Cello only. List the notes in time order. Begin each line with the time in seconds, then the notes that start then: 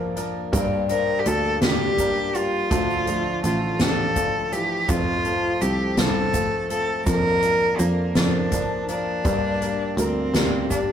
0.90 A#4
1.19 G4
1.27 A4
1.64 G4
2.36 F4
3.45 F4
3.81 A4
4.52 G4
4.89 F4
5.61 G4
5.99 A4
6.71 A4
7.06 A#4
7.78 A#3
8.16 D4
8.89 D4
9.99 C4
10.70 D4